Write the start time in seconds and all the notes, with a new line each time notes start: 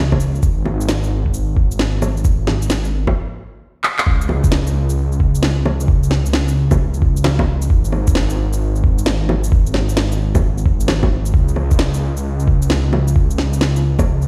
Already playing: C#2
0.12 kick, low bongo
0.20 shaker
0.35 shaker
0.43 G#1, kick, shaker
0.65 low bongo
0.81 shaker
0.89 snare, shaker
1.03 shaker
1.26 kick
1.34 shaker
1.57 kick
1.71 shaker
1.79 snare
2.02 low bongo, shaker
2.17 shaker
2.24 kick, shaker
2.47 snare, low bongo
2.62 shaker
2.70 snare, shaker
2.85 shaker
3.07 kick, low bongo
3.84 clap
3.98 clap
4.07 C#2, kick
4.21 shaker
4.29 low bongo
4.44 kick, shaker
4.52 snare
4.67 shaker
4.89 shaker
5.12 shaker
5.20 kick
5.35 shaker
5.43 snare
5.65 low bongo
5.80 shaker
5.88 kick
6.03 shaker
6.11 snare
6.26 shaker
6.33 snare
6.48 shaker
6.71 kick, low bongo, shaker
6.94 shaker
7.02 kick
7.17 shaker
7.24 snare, low bongo
7.39 kick, low bongo
7.62 shaker
7.70 G#1, kick
7.85 shaker
7.92 low bongo
8.07 kick, shaker
8.15 snare
8.30 shaker
8.53 shaker
8.76 shaker
8.84 kick
8.98 shaker
9.06 snare
9.29 low bongo
9.44 shaker
9.52 kick
9.66 shaker
9.74 snare, low bongo
9.89 shaker
9.97 snare
10.12 shaker
10.35 kick, low bongo, shaker
10.58 shaker
10.66 kick
10.80 shaker
10.88 snare, low bongo
11.03 kick, low bongo
11.26 shaker
11.34 C#2, kick
11.48 shaker
11.56 low bongo
11.71 kick, shaker
11.79 snare
11.94 shaker
12.17 shaker
12.40 shaker
12.48 kick
12.62 shaker
12.70 snare
12.93 low bongo
13.08 shaker
13.16 kick
13.31 shaker
13.38 snare
13.53 shaker
13.61 snare
13.76 shaker
13.99 kick, low bongo, shaker
14.22 shaker